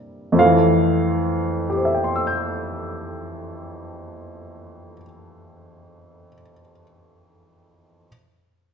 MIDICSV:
0, 0, Header, 1, 2, 480
1, 0, Start_track
1, 0, Key_signature, -1, "major"
1, 0, Tempo, 1298701
1, 139, Time_signature, 4, 2, 24, 8
1, 3230, End_track
2, 0, Start_track
2, 0, Title_t, "Grand piano"
2, 0, Program_c, 0, 0
2, 0, Control_c, 0, 64, 127
2, 0, Note_on_c, 0, 48, 47
2, 0, Note_on_c, 0, 55, 40
2, 0, Note_on_c, 0, 58, 47
2, 0, Note_on_c, 0, 62, 37
2, 0, Note_on_c, 0, 64, 54
2, 119, Note_on_c, 0, 41, 59
2, 131, Note_off_c, 0, 48, 0
2, 134, Note_on_c, 0, 53, 54
2, 137, Note_off_c, 0, 55, 0
2, 143, Control_c, 0, 64, 0
2, 144, Note_off_c, 0, 58, 0
2, 144, Note_off_c, 0, 62, 0
2, 144, Note_on_c, 0, 77, 69
2, 150, Note_on_c, 0, 57, 51
2, 151, Note_off_c, 0, 64, 0
2, 166, Note_on_c, 0, 52, 61
2, 203, Control_c, 0, 64, 127
2, 627, Note_on_c, 0, 67, 41
2, 654, Note_on_c, 0, 72, 38
2, 684, Note_on_c, 0, 76, 39
2, 719, Note_on_c, 0, 79, 37
2, 754, Note_on_c, 0, 84, 33
2, 797, Note_on_c, 0, 88, 31
2, 839, Note_on_c, 0, 91, 29
2, 1822, Note_off_c, 0, 41, 0
2, 1831, Note_off_c, 0, 77, 0
2, 1836, Note_off_c, 0, 53, 0
2, 1852, Note_off_c, 0, 57, 0
2, 1868, Note_off_c, 0, 52, 0
2, 2315, Note_off_c, 0, 67, 0
2, 2342, Note_off_c, 0, 72, 0
2, 2372, Note_off_c, 0, 76, 0
2, 2407, Note_off_c, 0, 79, 0
2, 2442, Note_off_c, 0, 84, 0
2, 2484, Note_off_c, 0, 88, 0
2, 2526, Note_off_c, 0, 91, 0
2, 2988, Control_c, 0, 64, 0
2, 3230, End_track
0, 0, End_of_file